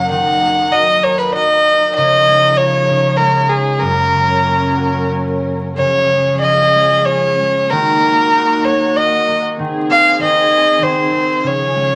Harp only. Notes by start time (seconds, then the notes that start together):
Already playing: F#2 C#3 F#3 A#3 C#4
0.10 D#3
0.42 A#3
0.73 F#4
1.04 A#4
1.35 F#4
1.97 C#3
2.28 G#3
2.59 F4
2.89 C#3
3.20 G#3
3.81 F#2
4.13 C#3
4.45 A#3
4.77 F#4
5.12 C#4
5.78 C#3
6.11 G#3
6.43 F4
6.75 G#3
7.07 G#4
7.40 G#3
7.71 D#3
8.04 A#3
8.35 D#4
8.67 A#3
8.97 F#4
9.28 A#3
9.59 D#3
9.89 C4
10.21 D#3
10.51 C4
10.81 D#3
11.12 C4
11.43 C#3
11.75 G#3